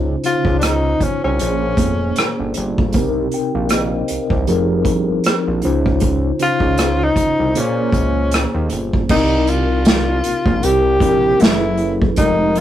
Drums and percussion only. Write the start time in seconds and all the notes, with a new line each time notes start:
0.24 closed hi-hat
0.45 kick
0.61 cross-stick, closed hi-hat
1.01 kick, closed hi-hat
1.39 closed hi-hat
1.77 kick, closed hi-hat
2.16 cross-stick, closed hi-hat
2.54 closed hi-hat
2.78 kick
2.93 kick, closed hi-hat
3.31 closed hi-hat
3.69 cross-stick, closed hi-hat
4.08 closed hi-hat
4.30 kick
4.47 closed hi-hat
4.85 kick, closed hi-hat
5.24 cross-stick, closed hi-hat
5.62 closed hi-hat
5.86 kick
6.00 kick, closed hi-hat
6.39 closed hi-hat
6.60 kick
6.78 cross-stick, closed hi-hat
7.16 kick, closed hi-hat
7.55 closed hi-hat
7.92 kick, closed hi-hat
8.31 cross-stick, closed hi-hat
8.70 closed hi-hat
8.93 kick
9.09 kick, crash
9.47 closed hi-hat
9.85 snare, closed hi-hat
10.24 closed hi-hat
10.46 kick
10.63 closed hi-hat
11.00 kick, closed hi-hat
11.40 snare, closed hi-hat
11.78 closed hi-hat
12.02 kick
12.16 kick, closed hi-hat
12.55 closed hi-hat